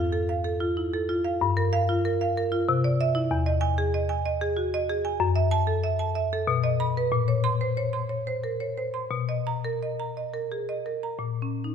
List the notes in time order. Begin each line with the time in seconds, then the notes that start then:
Already playing: F2 F4
0.13 A4
0.29 F5
0.44 A4
0.60 F4
0.77 E4
0.94 A4
1.09 F4
1.25 F5
1.41 G2
1.57 A#4
1.73 F5
1.89 F4
2.05 A#4
2.21 F5
2.37 A#4
2.52 F4
2.69 C3
2.84 D5
3.01 E5
3.15 E4
3.31 E2
3.46 D#5
3.61 G#5
3.78 G#4
3.94 D#5
4.09 G#5
4.25 D#5
4.41 G#4
4.57 F#4
4.74 D#5
4.89 G#4
5.05 G#5
5.20 F#2
5.36 E5
5.51 A5
5.67 A4
5.84 E5
5.99 A5
6.15 E5
6.33 A4
6.47 B2
6.64 D#5
6.80 B5
6.97 B4
7.12 A#2
7.28 C#5
7.44 C6
7.61 C5
7.77 C#5
7.93 C6
8.09 C#5
8.27 C5
8.44 A#4
8.60 C#5
8.78 C5
8.94 C6
9.11 B2
9.29 D#5
9.47 A#5
9.65 A#4
9.83 D#5
10.00 A#5
10.17 D#5
10.34 A#4
10.52 G#4
10.69 D#5
10.86 A#4
11.03 A#5
11.19 A#2
11.42 C#4
11.64 D#4